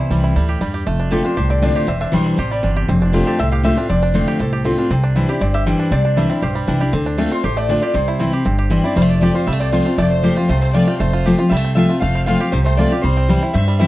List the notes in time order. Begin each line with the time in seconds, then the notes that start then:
Already playing: C3 E3 C4 C5
0.00 E4
0.10 C2 E3 G3 C4 E4
0.24 E4
0.36 D2 A2 G3
0.49 G4
0.61 E2 G2 G3
0.74 G4
0.86 F1 F2 A3
1.00 D4
1.11 D3 A3 C4 F4 G4 A4
1.24 C4 D4 F4 C5
1.37 C2 A2 G4 C5
1.50 C4 D5
1.62 D3 A3 C4 D4 F4 D5
1.76 G4 C5
1.87 E1 E2 C4 E5
2.01 D4 E5
2.12 B1 E3 G3 D4 E4 C5
2.26 C4
2.37 A1 C3 G4 C5
2.51 G3 D5
2.63 G1 E2 D4
2.76 G4
2.88 F1 F2 C4
3.02 D4
3.13 D3 A3 C4 F4 G4
3.27 G4 A4
3.39 C2 A2 C4 E5
3.51 G4 F5
3.63 D3 A3 C4 F4 E5
3.76 C4 D4 F4
3.89 F1 F2 C4 D5
4.03 D4
4.14 D3 A3 C4 F4 C5
4.28 G4
4.39 C2 A2 C4 A4
4.53 G4
4.64 D3 A3 C4 F4
4.78 C4 D4 F4
4.90 C2 C3 C4
5.04 D4
5.16 E3 G3 C4 D4 E4
5.29 D4 E4 G4
5.41 G1 G2 C4 D5
5.54 G4 E5
5.66 E3 G3 C4 D4 E4 G5
5.79 D4
5.91 C2 C3 C4 D5
6.05 D4
6.17 E3 G3 D4 E4 E5
6.30 C4 D4 E4
6.42 B1 G2 G4 C5
6.55 G3
6.67 C2 E3 G3 D4 E4
6.80 D4 E4 G4
6.93 D2 D3 C4
7.06 D4
7.18 D3 A3 C4 F4 A4
7.31 C4 F4 C5
7.43 A1 A2 G4 C5
7.57 A3 D5
7.69 D3 A3 C4 D4 F4 D5
7.82 C4 F4 G4 D5
7.94 C2 C3 C4 C5
8.08 E4
8.19 E3 G3 C4 E4
8.33 C4 E4 G4
8.45 G1 G2 C4
8.59 G4
8.70 E3 G3 C4 E4
8.84 C4 E4 D5
8.96 F1 F2 G3 C5
9.02 A3
9.09 D5
9.21 F3 A3 C4 F4 G4 D5
9.34 C4 F4 C5
9.47 C2 C3 G3 E5
9.53 A3
9.60 C4 D5
9.72 F3 A3 C4 F4 C5
9.86 A3 C4 F4
9.98 F1 F2 A3 D5
10.10 C5
10.23 F3 A3 C4 F4 G4
10.36 C4 F4
10.48 C2 C3 A3 C5
10.61 C4 C5
10.73 F3 A3 C4 F4 D5
10.88 A3 C4 F4
10.99 F1 F2 A3 C5
11.13 F4
11.26 F3 A3 C4 F4 G4
11.38 C4 F4
11.49 C2 C3 G3 E5
11.57 A3
11.64 C4
11.75 F3 A3 C4 F4 E5
11.89 A3 C4 F4
12.00 F1 F2 A3 F5
12.15 C4
12.26 F3 A3 C4 F4 F5
12.40 C4 F4 G4
12.52 C2 C3 C4 C5
12.64 A3 C5
12.77 F3 A3 C4 F4 D5
12.91 C4 F4 G4
13.02 C2 C3 G3 C5
13.17 C4
13.29 E3 G3 C4 E4
13.42 C4 E4
13.54 G2 C4 E5
13.68 G3
13.79 E3 G3 C4 E4 E5